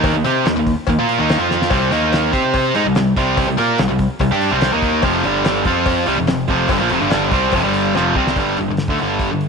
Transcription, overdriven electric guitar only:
0.00 0.13 D#3 medium
0.00 0.13 A#3 loud
0.00 0.15 D#4 medium
0.14 0.25 D#3 medium
0.14 0.24 A#3 medium
0.24 0.45 C4 medium
0.24 0.46 G4 medium
0.24 0.45 C5 loud
0.44 0.55 D#3 medium
0.44 0.56 A#3 medium
0.56 0.73 D#3 medium
0.56 0.73 A#3 medium
0.89 0.99 D#3 medium
0.89 0.98 A#3 medium
0.99 1.17 A#3 medium
0.99 1.18 F4 medium
0.99 1.19 A#4 medium
1.18 1.39 D#3 medium
1.18 1.39 A#3 medium
1.18 1.39 D#4 medium
1.39 1.70 F3 medium
1.39 1.71 C4 loud
1.39 1.71 F4 loud
1.71 1.91 C3 medium
1.71 1.92 G3 medium
1.71 1.92 C4 loud
1.91 2.33 D#3 medium
1.91 2.32 A#3 medium
1.91 2.32 D#4 medium
2.32 2.74 C4 medium
2.32 2.74 G4 medium
2.32 2.75 C5 medium
2.75 2.84 G#3 medium
2.75 2.85 D#4 medium
2.84 2.95 C3 medium
2.84 2.95 G3 medium
2.96 3.13 C3 medium
2.96 3.13 G3 medium
3.17 3.47 C3 loud
3.17 3.47 G3 loud
3.17 3.48 C4 medium
3.48 3.59 C3 medium
3.48 3.57 G3 medium
3.57 3.78 A#3 medium
3.57 3.78 F4 medium
3.57 3.79 A#4 loud
3.77 3.87 C3 medium
3.77 3.88 G3 medium
3.88 4.06 C3 medium
3.88 4.06 G3 medium
4.20 4.31 C3 medium
4.20 4.30 G3 medium
4.32 4.50 G3 medium
4.32 4.52 D4 medium
4.32 4.52 G4 medium
4.52 4.72 C3 medium
4.52 4.72 G3 medium
4.52 4.73 C4 medium
4.73 5.03 D#3 medium
4.73 5.04 A#3 medium
4.73 5.04 D#4 medium
5.04 5.24 F2 loud
5.04 5.25 C3 loud
5.04 5.25 F3 loud
5.26 5.66 G2 medium
5.26 5.66 D3 medium
5.26 5.67 G3 medium
5.67 6.07 F3 medium
5.67 6.08 C4 medium
5.67 6.08 F4 loud
6.08 6.17 C3 medium
6.08 6.18 G3 medium
6.18 6.26 F2 medium
6.18 6.27 C3 medium
6.28 6.45 F2 medium
6.28 6.45 C3 medium
6.50 6.70 F2 medium
6.50 6.70 C3 loud
6.50 6.70 F3 medium
6.70 6.80 G2 loud
6.70 6.80 D3 loud
6.81 6.91 A#2 medium
6.81 6.91 F3 loud
6.91 7.01 F2 medium
6.91 7.01 C3 medium
7.02 7.10 G2 medium
7.02 7.11 D3 medium
7.11 7.32 G2 medium
7.11 7.32 D3 medium
7.11 7.32 G3 loud
7.33 7.53 C3 medium
7.33 7.53 G3 medium
7.33 7.53 C4 medium
7.55 7.64 F2 medium
7.55 7.64 C3 loud
7.65 7.95 G2 medium
7.65 7.95 D3 medium
7.65 7.95 G3 loud
7.97 8.16 F2 medium
7.97 8.16 C3 medium
7.97 8.16 F3 loud
8.18 8.37 C3 medium
8.18 8.37 G3 medium
8.18 8.37 C4 medium
8.39 8.58 G2 medium
8.39 8.58 D3 medium
8.39 8.58 G3 loud
8.61 8.69 G2 medium
8.61 8.69 D3 medium
8.70 8.86 G2 medium
8.70 8.86 D3 medium
8.90 8.99 D3 medium
8.90 8.99 A3 medium
9.02 9.31 G2 medium
9.02 9.31 D3 medium
9.02 9.31 G3 medium
9.33 9.48 G2 medium
9.33 9.48 D3 medium

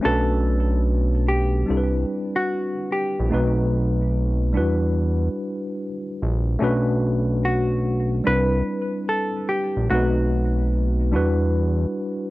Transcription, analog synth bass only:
0.05 1.65 B1 loud
1.70 2.05 C2 medium
3.20 3.32 A#1 loud
3.34 4.59 B1 loud
4.58 5.29 E2 loud
6.22 6.57 A#1 loud
6.62 8.22 B1 loud
8.27 8.63 C2 loud
9.77 9.89 A#1 medium
9.91 11.16 B1 loud
11.14 11.86 E2 loud

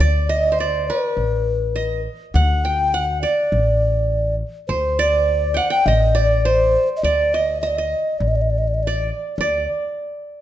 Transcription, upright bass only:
0.00 0.88 D2 medium
1.17 2.06 A1 medium
2.34 3.23 D2 loud
3.52 4.41 A1 medium
4.69 5.58 D2 medium
5.86 6.75 A1 medium
7.03 7.93 D2 medium
8.20 9.10 A1 medium
9.38 9.65 D2 medium

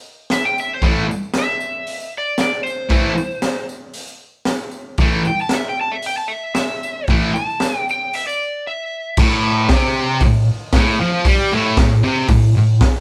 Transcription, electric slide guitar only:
0.33 0.45 E5 medium
0.45 0.57 G5 medium
0.60 0.71 E5 loud
0.74 0.85 C5 medium
1.39 2.13 E5 loud
2.18 2.40 D5 medium
2.41 2.63 D5 medium
2.63 3.66 C5 medium
5.27 5.40 G5 loud
5.42 5.53 A5 medium
5.53 5.66 E5 medium
5.69 5.80 G5 medium
5.81 5.93 A5 medium
5.92 6.04 E5 medium
6.06 6.17 G5 medium
6.18 6.30 A5 medium
6.28 6.54 E5 medium
6.55 7.07 E5 medium
7.34 7.85 A5 loud
7.91 8.15 G5 medium
8.15 8.27 E5 medium
8.27 8.65 D5 medium
8.67 9.17 E5 medium

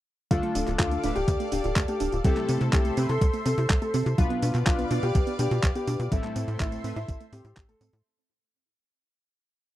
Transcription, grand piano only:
0.31 0.67 F4 medium
0.79 1.06 F4 medium
1.16 1.42 G4 loud
1.52 1.79 G4 medium
1.89 2.15 G4 medium
2.25 2.60 G4 loud
2.73 3.00 G4 loud
3.09 3.36 A4 loud
3.46 3.72 A4 medium
3.82 4.09 A4 medium
4.18 4.54 F4 loud
4.67 4.93 F4 medium
5.03 5.30 G4 loud
5.39 5.66 G4 medium
5.76 6.02 G4 medium
6.12 6.47 E4 loud
6.60 6.87 E4 loud
6.96 7.23 E4 loud
7.33 7.59 G4 loud
7.69 7.96 A4 loud

